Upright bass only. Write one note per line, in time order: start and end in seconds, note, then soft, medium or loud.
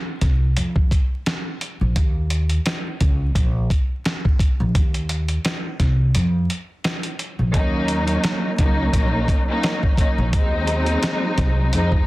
0.22 0.53 C2 medium
0.57 0.88 F2 loud
1.81 1.95 A#1 medium
1.96 2.58 D#2 loud
3.01 3.32 C#2 loud
3.36 3.66 A#1 loud
4.60 4.74 A#1 medium
4.75 5.37 D#2 loud
5.80 6.11 C2 loud
6.15 6.46 F2 loud
7.39 7.53 A#1 medium
7.54 8.16 D#2 loud
8.59 8.90 C#2 loud
8.93 9.24 A#1 loud
10.18 10.32 A#1 medium
10.33 10.95 D#2 loud
11.38 11.69 C2 loud
11.73 12.04 F2 loud